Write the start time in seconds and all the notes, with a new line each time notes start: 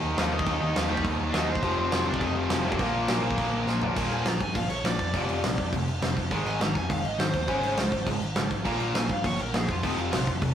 Already playing: D#3 A#3 D#4
0.03 D#2
0.17 D#2 D#3 F3 A#3 D#4 F4, snare, crash
0.31 D#2 D#3 A#3 D#4 D#5
0.39 kick
0.45 D#2 D#3 A#3 D#4, kick, crash
0.61 D#2 D#4 D#5
0.76 D#2 F3 F4, snare, crash
0.89 D#2 D#3 G3 A#3 D#4 G4
0.97 kick
1.04 D#2, kick, crash
1.19 D#2
1.31 D#2 D#3 A#3 D4, snare, crash
1.35 D#4 D#5
1.49 C4 C5
1.55 kick
1.63 F1 F2 C3 F3, kick, crash
1.78 F1 C4 C5
1.92 F1, snare, crash
2.05 F1 F2 C3 F3 D4
2.10 D5
2.14 kick
2.21 F2 D#4 D#5, kick, crash
2.36 F1 F3 F4
2.50 F1, snare, crash
2.64 F1 F2 C3 F3 A#3 A#4
2.72 kick
2.79 A#1 A#2 F3 A#3, kick, crash
2.95 A#1
3.08 A#1, snare, crash
3.23 A#1 A#2 F3 A#3
3.31 kick
3.38 A#1, kick, crash
3.53 A#1
3.67 A#1, snare
3.81 A#2 F3 A#3, floor tom
3.96 A#1 A#2 F3 A#3, kick, crash
4.11 A#1 G#5, crash
4.25 A#1 A#2 F3 A#5, snare, crash
4.40 G2 G#5, kick, crash
4.55 G1 A#2 F3 F5, kick, crash
4.69 A#1 C#5, crash
4.84 A#1 A#2 F3 D5, snare, crash
4.99 F2, kick, crash
5.14 F1 F2 C3 F3, kick, crash
5.29 F1, crash
5.43 A#1 F2 C3, snare, crash
5.58 F1, kick, crash
5.72 F1 F2 C3, kick, crash
5.88 F1, crash
6.02 F1 F2 C3, snare, crash
6.17 kick, crash
6.31 G#1 G#2 D#3 G#3, kick, crash
6.45 G#1 G#5, crash
6.61 G#1 G#2 D#3 A#5, snare, crash
6.75 F2 G#5, kick, crash
6.89 F1 G#2 D#3 F5, kick, crash
7.05 G#1 D#5, crash
7.19 G#1 G#2 D#3 C5, snare, crash
7.34 D#2, kick, crash
7.48 G#1 C#3 G#3 C#4, kick, crash
7.63 G#1, crash
7.77 C#2 C#3 G#3, snare, crash
7.92 G#1, kick, crash
8.06 G#1 C#3 G#3, kick, crash
8.21 G#1, crash
8.36 G#1 C#3 G#3, snare, crash
8.51 kick, crash
8.65 A#1 A#2 F3 A#3 A#5, kick, crash
8.80 A#1, crash
8.94 A#1 A#2 F3 G#5, snare, crash
9.09 G2 F5, kick, crash
9.24 G1 A#2 F3 C#5, kick, crash
9.39 A#1 A#4, crash
9.54 A#1 A#2 F3 G#4, snare, crash
9.69 F2 F4, kick, crash
9.83 F1 F2 C3 F3 D#4, kick, crash
9.97 F1 F4, crash
10.12 A#1 F2 C3, snare, crash
10.27 F1, kick, crash
10.42 F1 F2 C3, kick, crash